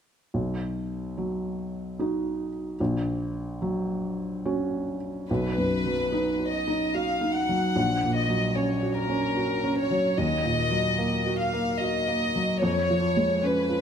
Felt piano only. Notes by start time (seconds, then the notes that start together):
0.34 B1
1.18 F#3
1.99 D#4 F#4
2.80 A#1
3.62 F#3
4.45 C#4 F#4
5.30 B1
5.58 F#2
5.85 F#3
6.12 D#4
6.39 F#4
6.67 D#4
6.94 F#4
7.21 D#4
7.49 F#3
7.76 A#1
8.02 A#2
8.28 F#3
8.56 C#4
8.82 F#4
9.09 C#4
9.37 F#4
9.64 C#4
9.91 F#3
10.18 D#2
10.44 A#2
10.71 F#3
10.98 A#3
11.26 F#4
11.53 A#3
11.81 F#4
12.08 A#3
12.35 F#3
12.62 F2
12.90 F3
13.17 G#3
13.43 C#4
13.70 F4